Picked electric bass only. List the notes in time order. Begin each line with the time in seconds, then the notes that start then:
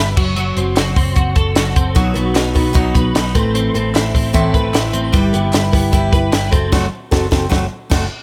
Already playing: G1
0.17 F#1
0.57 F#1
0.76 F#1
0.96 F#1
1.17 F#1
1.36 F#1
1.56 F#1
1.77 F#1
1.96 B1
2.16 B1
2.35 B1
2.56 B1
2.75 B1
2.95 B1
3.16 B1
3.35 A1
3.76 A1
3.95 A1
4.15 A1
4.35 A1
4.54 A1
4.74 A1
4.94 A1
5.14 G1
5.35 G1
5.54 G1
5.73 G1
5.93 G1
6.13 G1
6.33 G1
6.53 F#1
6.73 F#1
7.12 F#1
7.32 F#1
7.52 F#1
7.91 F#1